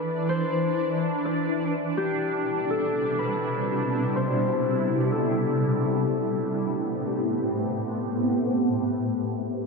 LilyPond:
<<
  \new Staff \with { instrumentName = "Harp" } { \time 4/4 \key a \minor \tempo 4 = 124 r8 c''2 d''4. | g'4. a'4 b'4. | r8 c''2 a'4. | a'2. r4 |
r1 | }
  \new Staff \with { instrumentName = "Ambient pad" } { \time 4/4 \key a \minor <e d'>1 | <b, c g e'>1~ | <b, c g e'>1 | <a, a b c' g'>1~ |
<a, a b c' g'>1 | }
>>